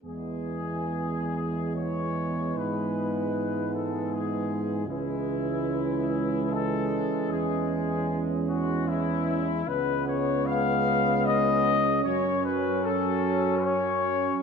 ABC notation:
X:1
M:3/4
L:1/8
Q:1/4=75
K:E
V:1 name="Trumpet section"
G4 c2 | B3 A G2 | E4 A2 | G3 F E2 |
B c ^e2 d2 | c B A2 c2 |]
V:2 name="French horn section"
B,6- | B,6 | C6- | C6 |
C6- | C6 |]
V:3 name="Trombone section"
G,6- | G,6 | G,6- | G,6 |
B,6 | C6 |]
V:4 name="Euphonium" clef=bass
E,6- | E,6 | E,6- | E,4- E, z |
G,6 | F,6 |]
V:5 name="Tuba" clef=bass
E,,6 | G,,6 | C,,4- C,, z | E,,6 |
C,,6 | F,,6 |]